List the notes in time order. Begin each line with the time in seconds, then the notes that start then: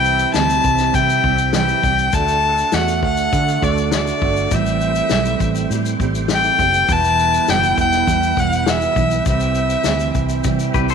Already playing: C2 C3 E3 G3 C4 E4 G4 E5 G5
0.05 shaker
0.19 shaker
0.34 D2 C3 E3 G3 C4 E4 A5, snare, shaker
0.50 shaker
0.64 C2, kick, shaker
0.78 snare, shaker
0.94 C3 E3 G3 C4 E4 G5, kick, shaker
1.09 shaker
1.24 C2 G3 C4 E4, kick
1.38 shaker
1.53 C3 E3 G3 C4 E4 G5, snare, shaker
1.68 shaker
1.83 C2 G3 C4, kick, shaker
1.98 shaker
2.12 D2 D3 A3 D4 F#4 A4 F#5 A5, kick, shaker
2.28 shaker
2.58 shaker
2.72 E2 D3 A3 D4 F#4 F#5, snare, shaker
2.88 shaker
3.03 D2 F#5, kick
3.17 shaker
3.33 D3 A3 D4 F#4, kick, shaker
3.48 shaker
3.62 D2 A3 D4 F#4 D5, kick, shaker
3.78 shaker
3.91 D3 A3 D4 F#4 D5, snare, shaker
4.07 shaker
4.22 G1 A3 D4 F#4, kick
4.37 shaker
4.51 A1 A2 E3 G3 A3 C4 E4 G4 C5 E5 G5, kick, shaker
4.66 shaker
4.81 shaker
4.95 shaker
5.09 B1 A2 E3 G3 C4 G4, snare, shaker
5.25 shaker
5.40 A1, kick, shaker
5.55 shaker
5.70 A2 E3 G3 C4 G4, shaker
5.86 shaker
6.00 A1 G3 C4 G4, kick, shaker
6.15 shaker
6.28 A2 E3 G3 C4 G4, snare, shaker
6.33 G5
6.44 shaker
6.59 F#1 G3 C4 G4, kick, shaker
6.74 shaker
6.89 E1 E2 B2 E3 G3 B3 E4 B4 A5, kick, shaker
7.04 shaker
7.19 shaker
7.34 shaker
7.48 F#1 E2 B2 E3 G3 B3 E4 G5, snare, shaker
7.63 shaker
7.78 E1 G5, kick, shaker
7.93 snare, shaker
8.07 E2 E3 G3 B3 E4, kick, shaker
8.23 shaker
8.37 E1 E3 G3 B3 E4 F#5, kick, shaker
8.53 shaker
8.65 E2 B2 E3 G3 B3 E4, snare, shaker
8.69 E5
8.81 shaker
8.96 B1 E3 G3 B3 E4, kick, shaker
9.11 shaker
9.25 C2 C3 E3 G3 C4 E4 E5, kick, shaker
9.40 shaker
9.55 shaker
9.70 shaker
9.84 D2 C3 E3 G3 C4 E4, snare, shaker
10.00 shaker
10.15 C2, kick, shaker
10.29 shaker
10.44 C3 E3 G3 C4 E4, kick, shaker
10.59 shaker
10.74 C2 G3 C4 E4 G4 B4, kick, shaker
10.89 A4 C5, shaker